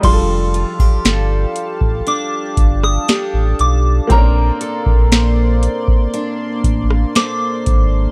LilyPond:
<<
  \new Staff \with { instrumentName = "Synth bell" } { \time 4/4 \key f \major \tempo 4 = 59 c'''2 d'''8. ees'''8. d'''8 | bes''2 r4 d'''4 | }
  \new Staff \with { instrumentName = "Analog synth pad" } { \time 4/4 \key f \major <g' f'' a''>1 | <bes d'' c'''>1 | }
  \new Staff \with { instrumentName = "Steel-string acoustic guitar" } { \time 4/4 \key f \major f8 f'16 g'16 a'4 d'4 <d' g' a'>4 | bes8 a'8 c''4 d'4 <d' a' c''>4 | }
  \new Staff \with { instrumentName = "Grand piano" } { \time 4/4 \key f \major <g d' f' aes' a'>1 | <bes c' des' d' bes'>1 | }
  \new Staff \with { instrumentName = "Sub bass" } { \clef bass \time 4/4 \key f \major f,,8. g,,16 g,,8 r16 a,,16 r8 g,,8 r16 a,,16 b,,8 | bes,,8 r16 bes,,4 r8. a,,8 r8 aes,,8 | }
  \new DrumStaff \with { instrumentName = "Drums" } \drummode { \time 4/4 <cymc hh bd>8 hh16 bd16 <hh sn>8 hh16 bd16 hh8 <hh bd>16 ss16 <hh sn>8 hh8 | <hh bd>8 hh16 bd16 <hh sn>8 hh16 bd16 hh8 <hh bd>16 ss16 <hh sn>8 <hh bd>8 | }
>>